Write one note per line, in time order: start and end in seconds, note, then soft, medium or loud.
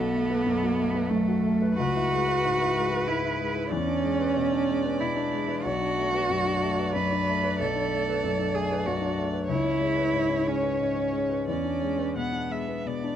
0.00 1.75 B1 medium
0.00 1.12 B3 loud
0.00 0.23 F#4 soft
0.00 1.74 A4 medium
0.15 0.40 A3 soft
0.30 0.56 B4 soft
0.46 0.72 F#2 soft
0.63 0.88 F#4 soft
0.79 1.04 A3 soft
0.94 1.20 B4 soft
1.10 1.37 F#2 soft
1.10 1.77 A3 medium
1.28 1.55 F#4 medium
1.45 1.72 A3 soft
1.62 1.78 B4 medium
1.78 3.69 C#2 medium
1.78 3.09 F#4 loud
1.78 3.68 B4 medium
1.96 2.21 E4 soft
2.12 2.38 G#3 soft
2.28 2.54 B4 soft
2.45 2.70 G#2 soft
2.61 2.86 E4 soft
2.77 3.02 G#3 soft
2.92 3.18 B4 soft
3.08 3.34 G#2 soft
3.08 3.74 E4 medium
3.24 3.50 E4 soft
3.41 3.66 G#3 soft
3.56 3.72 B4 soft
3.72 5.60 E2 medium
3.72 5.02 C#4 loud
3.72 5.60 D5 medium
3.87 4.13 D4 soft
4.03 4.29 G#3 soft
4.20 4.45 B4 soft
4.36 4.61 B2 soft
4.52 4.77 D4 soft
4.69 4.94 G#3 soft
4.85 5.10 B4 soft
5.00 5.26 B2 soft
5.00 5.65 E4 medium
5.16 5.42 D4 medium
5.33 5.58 G#3 medium
5.48 5.64 B4 soft
5.63 7.55 B1 medium
5.63 6.94 F#4 loud
5.63 9.46 D5 medium
5.81 6.06 D4 soft
5.98 6.23 A3 soft
6.14 6.39 B4 soft
6.30 6.55 F#2 soft
6.45 6.72 D4 soft
6.62 6.89 A3 soft
6.79 7.05 B4 soft
6.95 7.21 F#2 soft
6.95 7.58 B4 medium
7.12 7.37 D4 soft
7.28 7.53 A3 soft
7.44 7.69 B4 soft
7.60 9.46 B1 medium
7.60 8.56 A4 medium
7.76 8.01 D4 soft
7.93 8.17 A3 soft
8.09 8.33 B4 soft
8.24 8.49 F#2 soft
8.39 8.64 D4 soft
8.55 8.80 A3 soft
8.55 8.88 G#4 medium
8.71 8.96 B4 soft
8.86 9.12 F#2 soft
8.86 9.18 F#4 medium
9.01 9.27 D4 soft
9.18 9.43 A3 soft
9.33 9.50 B4 soft
9.49 11.44 C#2 medium
9.49 10.49 E4 medium
9.49 11.44 C#5 medium
9.65 9.91 C#4 soft
9.80 10.07 G#3 soft
9.96 10.23 B4 soft
10.13 10.40 G#2 soft
10.29 10.56 C#4 soft
10.46 10.73 G#3 soft
10.46 11.49 C#4 medium
10.63 10.90 B4 soft
10.80 11.07 G#2 soft
10.95 11.23 C#4 soft
11.13 11.41 G#3 soft
11.29 11.47 B4 soft
11.48 13.16 E2 soft
11.48 12.20 C#4 medium
11.48 12.09 D5 soft
11.64 11.92 D4 soft
11.82 12.09 G#3 soft
11.98 12.26 B4 soft
12.16 12.44 B2 soft
12.16 13.16 B3 soft
12.16 12.53 F#5 medium
12.32 12.61 D4 soft
12.50 12.78 G#3 soft
12.50 12.88 E5 soft
12.68 12.96 B4 soft
12.86 13.14 B2 soft
12.86 13.16 D5 soft
13.04 13.16 D4 soft